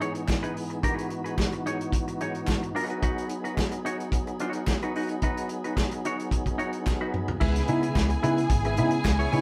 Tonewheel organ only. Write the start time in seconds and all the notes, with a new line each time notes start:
Already playing: G#2 E3 B3 D#4 G#4
0.83 F#4
2.75 F#3 B3 G#4
7.42 C#3 G#3 B3 E4